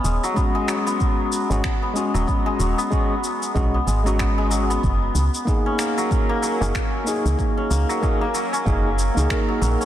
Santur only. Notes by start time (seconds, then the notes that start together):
Already playing: B3 C#4
0.04 G#3
0.23 F#3
0.36 B3
0.55 G#3
0.68 F#3
0.87 B3
1.82 B3
1.96 G#3
2.14 F#3
2.27 B3
2.46 G#3
2.59 F#3
2.78 B3
3.74 B3
3.87 G#3
4.06 F#3
4.19 B3
4.38 G#3
4.51 F#3
4.70 B3
5.66 C#4
5.79 A#3
5.98 F#3
6.11 C#4
6.29 A#3
6.42 F#3
6.62 C#4
7.57 C#4
7.70 A#3
7.89 F#3
8.03 C#4
8.21 A#3
8.34 F#3
8.53 C#4
9.30 A#4
9.49 F#3
9.61 F#3
9.80 C#4